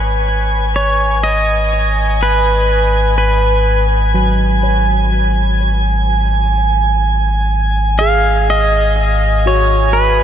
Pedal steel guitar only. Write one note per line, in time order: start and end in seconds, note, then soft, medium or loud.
0.76 1.23 C#5 medium
1.23 2.23 D#5 medium
2.23 3.17 B4 medium
3.18 3.86 B4 medium
7.99 8.50 F5 loud
8.50 9.49 D#5 loud
9.47 9.96 C#5 medium
9.93 10.23 B4 medium